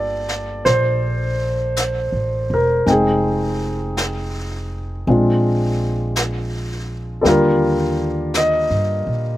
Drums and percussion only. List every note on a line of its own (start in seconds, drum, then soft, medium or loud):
0.28 snare soft
0.65 brush sweep soft
0.65 snare soft
1.76 brush sweep soft
1.76 snare soft
1.76 hi-hat pedal soft
2.87 brush sweep soft
2.87 snare soft
3.97 brush sweep soft
3.97 snare soft
3.97 hi-hat pedal soft
5.07 brush sweep soft
6.16 brush sweep soft
6.16 snare soft
6.16 hi-hat pedal soft
7.25 brush sweep soft
7.25 snare soft
8.34 brush sweep soft
8.34 snare soft
8.34 hi-hat pedal soft